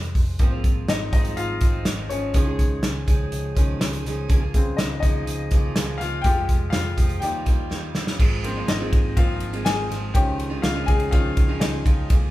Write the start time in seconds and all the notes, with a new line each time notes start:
Already playing: F1 F3 G3 G#3 C4 C5
0.03 closed hi-hat
0.15 F1, kick, open hi-hat
0.39 G#1 G#2 D#3 F3 G#3 A#3 C4 F4, kick, closed hi-hat
0.51 F3 G#3 C4 F4
0.64 G#1, kick, closed hi-hat
0.88 G#1 D#4 D#5, snare, closed hi-hat
1.12 G#1 F3 G#3 C4 D#4 F4 D#5, kick, closed hi-hat
1.25 closed hi-hat
1.36 G#1 F4 F5, closed hi-hat
1.61 G#1 F3 G#3 C4 F4, kick, closed hi-hat
1.85 G#1 F3 G#3 C4 F4, snare, closed hi-hat
2.09 G#1 F3 G#3 C4 C#4 F4 C#5, closed hi-hat
2.34 C#2 C#3 D#3 F3 G#3 C#4 D#4 G#4, kick, closed hi-hat
2.45 G#3 D#4 G#4
2.59 C#2, kick, closed hi-hat
2.83 C#2, snare, closed hi-hat
3.07 C#2 F3 G#3 D#4 G#4, kick, closed hi-hat
3.32 C#2, closed hi-hat
3.55 C#2 D#3 F3 G#3 C#4 D#4 G#4, kick, closed hi-hat
3.79 C#2 F3 G#3 D#4 G#4, snare, closed hi-hat
3.93 closed hi-hat
4.05 C#2 F3 G#3 D#4 G#4, snare, closed hi-hat
4.28 C#2 C#3 F3 A#3 F4 G#4, kick, closed hi-hat
4.40 A#3 F4 G#4
4.54 C#2 C#3 G#3 C4, kick, closed hi-hat
4.77 C#2 D#4 D#5, snare, closed hi-hat
5.00 C#2 F3 A#3 D#4 D#5, kick, closed hi-hat
5.04 F4 G#4
5.27 C#2, closed hi-hat
5.51 C#2 F3 A#3 F4 G#4, kick, closed hi-hat
5.76 C#2 F3 A#3 F4 G#4, snare, closed hi-hat
5.98 C#2 F3 A#3 F4 F5, snare, closed hi-hat
6.02 F4 G#4
6.22 F1 F2 C3 F3 G#3 G5, kick, closed hi-hat
6.26 G#3 F4 G4
6.36 F3 G#3 F4 G4
6.49 F1, kick, closed hi-hat
6.70 F1 F5, snare, closed hi-hat
6.74 F4
6.97 F1 F3 G#3 F4 G4, kick, closed hi-hat
7.09 closed hi-hat
7.20 D#2 D#3 F3 G3 A#3 D#4 F4 G4 G5, closed hi-hat
7.45 D#2 G3 A#3 D#4 F4, kick, closed hi-hat
7.70 D#2 G3 A#3 D#4 F4, snare
7.94 D#2 G3 A#3 D#4 F4, snare
8.07 snare
8.19 G#1 F3 G#3 C4 F4, kick, crash
8.43 F3 A#3 C4, ride
8.55 G#2 D#3 F3 G#3 C4 F4
8.68 G#1 D#4 D#5, snare, ride
8.80 G#2 D#3 F3 G#3 C4 F4
8.93 G#1, kick, ride
9.16 G#1 F3 G#3 A#3 C4 F4 F5, kick, ride
9.40 G#1, ride
9.53 G#2 D#3 F3 G#3 C4 F4, ride
9.65 G#1 G#4 G#5, snare, ride
9.89 G#1 F3 G#3 C4 F4, snare, ride
10.13 C#2 D#3 F3 G#3 C#4 D#4 F4 G4 G5, kick, ride
10.39 ride
10.50 C#3 F3 G#3 D#4 F4
10.62 C#2 F4 F5, snare, ride
10.74 C#3 F3 G#3 D#4 F4
10.86 C#2 G#4 G#5, kick, ride
11.00 ride
11.11 C#2 D#3 F3 G#3 C#4 D#4 F4 F5, kick, ride
11.37 C#2, kick, ride
11.48 C#3 F3 G#3 D#4 F4
11.60 C#2 D#4 D#5, snare, ride
11.84 C#2 F3 G#3 D#4 F4, kick, ride
12.09 C#2 F3 A#3 F4 G#4, kick, ride